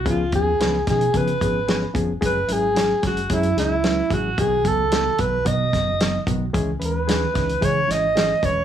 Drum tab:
HH |x-x-x-xxxxx-x-x-|x-x-x-xxxxx-x-x-|x-x-x-x-x-x-x-x-|x-x-x-xxx-x-x-x-|
SD |----o-o-----o---|----o-o---o-o---|----o-----o-o---|----o-o---o-o---|
BD |o-o---o-o-o---o-|o-----o-o-----o-|o-o---o-o-o---o-|o-----o-o-----o-|